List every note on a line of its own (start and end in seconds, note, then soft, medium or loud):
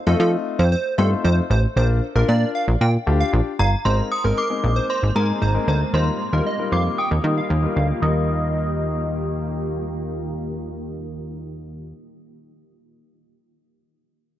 0.07 0.15 F2 medium
0.07 0.57 A3 medium
0.07 0.57 C4 medium
0.07 0.58 D#4 medium
0.07 0.58 F4 medium
0.07 0.18 A4 medium
0.07 0.58 D#5 medium
0.20 0.36 F3 loud
0.20 0.31 A4 medium
0.59 0.76 F2 loud
0.59 0.70 C5 medium
0.72 0.94 C5 medium
0.98 1.15 G2 medium
0.98 1.41 A3 medium
0.98 1.42 C4 medium
0.98 1.42 D#4 medium
0.98 1.42 F4 medium
0.98 1.09 A4 medium
0.98 1.42 C5 medium
1.24 1.41 F2 loud
1.24 1.35 C5 medium
1.50 1.67 A1 loud
1.50 1.61 C5 medium
1.76 2.01 A#1 loud
1.76 1.98 D4 medium
1.76 1.98 F4 medium
1.76 1.98 A#4 medium
1.76 1.88 C5 loud
2.15 2.24 A#1 medium
2.15 2.66 D4 medium
2.15 2.66 F4 medium
2.15 2.26 A#4 medium
2.15 2.66 A#4 medium
2.28 2.45 A#2 loud
2.28 2.50 D5 medium
2.55 2.66 F5 medium
2.68 2.76 A#1 loud
2.81 2.97 A#2 loud
2.81 2.92 G5 medium
3.07 3.23 D2 medium
3.07 3.50 D4 medium
3.07 3.50 F4 medium
3.07 3.50 G4 medium
3.20 3.31 F5 medium
3.33 3.41 A#1 loud
3.59 3.76 G1 medium
3.59 3.70 F5 medium
3.59 3.83 A#5 medium
3.85 4.02 G#1 loud
3.85 4.07 G#3 medium
3.85 5.92 G#3 medium
3.85 5.92 A#3 medium
3.85 4.07 C4 medium
3.85 5.92 C4 medium
3.85 4.07 D#4 medium
3.85 4.07 A#4 medium
3.85 3.96 C5 loud
3.85 4.12 C6 loud
4.12 4.23 D#6 loud
4.24 4.33 G#1 medium
4.24 4.39 G#3 medium
4.24 4.39 C4 medium
4.24 4.39 D#4 medium
4.24 4.39 A#4 medium
4.24 4.35 A#4 medium
4.37 4.48 A#4 medium
4.37 4.91 D6 loud
4.50 4.86 G#3 medium
4.50 4.87 C4 medium
4.50 4.87 D#4 medium
4.50 4.87 A#4 medium
4.64 4.80 A#1 medium
4.76 4.87 C5 medium
4.89 5.11 C5 medium
4.89 5.17 C6 medium
5.03 5.11 G#1 loud
5.15 5.32 G#2 loud
5.15 5.37 G#3 medium
5.15 5.37 C4 medium
5.15 5.37 D#4 medium
5.15 5.37 G#4 medium
5.15 5.27 A#4 medium
5.15 5.67 A#5 medium
5.42 5.58 G#1 medium
5.42 5.53 C5 medium
5.54 5.76 G#3 medium
5.54 5.76 C4 medium
5.54 5.76 D#4 medium
5.54 5.76 A#4 medium
5.68 5.84 D2 medium
5.68 5.79 C5 medium
5.68 5.95 A#5 medium
5.94 6.10 D#2 loud
5.94 8.01 D#3 medium
5.94 6.15 G3 medium
5.94 8.01 A#3 medium
5.94 6.15 D#4 medium
5.94 6.16 F4 medium
5.94 8.01 F4 medium
5.94 8.01 G4 medium
5.94 6.16 A#4 medium
5.94 6.05 C5 loud
5.94 6.75 C6 medium
6.33 6.41 D#2 medium
6.33 6.47 G3 medium
6.33 6.47 D#4 medium
6.33 6.47 F4 medium
6.33 6.44 A#4 medium
6.33 6.48 A#4 medium
6.46 6.68 D#5 medium
6.59 6.95 G3 medium
6.59 6.95 D#4 medium
6.59 6.95 F4 medium
6.59 6.95 A#4 medium
6.72 6.89 F2 medium
6.72 6.83 F5 medium
6.72 6.99 D6 medium
6.98 7.09 G5 medium
6.98 7.72 D#6 medium
7.11 7.19 D#2 medium
7.24 7.40 D#3 loud
7.24 7.46 G3 medium
7.24 7.46 D#4 medium
7.24 7.46 F4 medium
7.24 7.46 A#4 medium
7.37 7.48 F5 medium
7.50 7.67 D#2 loud
7.63 7.85 G3 medium
7.63 7.85 D#4 medium
7.63 7.85 F4 medium
7.63 7.85 A#4 medium
7.76 7.93 D2 medium
7.76 7.87 F5 medium
8.00 11.93 D#2 loud
8.00 11.94 D#3 medium
8.00 11.91 G3 medium
8.00 11.93 A#3 medium
8.00 11.92 D#4 medium
8.00 11.94 F4 medium
8.00 11.94 G4 medium
8.00 11.95 A#4 medium
8.00 9.55 D#5 medium
8.00 11.93 D#6 medium